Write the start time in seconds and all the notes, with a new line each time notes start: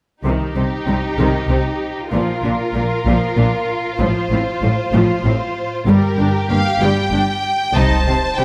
0.24 C2 C3 D#3 D#4 G4
0.56 C2 C3 C4
0.87 C2 C3 G3
1.19 C2 C3 D#3
1.49 C2 C3 C4
2.12 A#1 A#2 F3 F4 A#4
2.43 A#1 A#2 D4
2.74 A#1 A#2 A#3
3.05 A#1 A#2 F3
3.37 A#1 A#2 D4
3.99 A1 A2 F3 C5
4.31 A1 A2 C4
4.62 A1 A2 A3
4.93 A1 A2 F3
5.24 A1 A2 C4
5.87 G1 G2 G3 G4 A#4
6.18 G1 G2 D4
6.49 G1 G2 A#3 F5
6.80 G1 G2 G3 G5
7.11 G1 G2 D4
7.74 C2 C3 D#4 C5 D#5 A5, impact
8.06 C3 C4 C5
8.37 C3 G3 G4 G5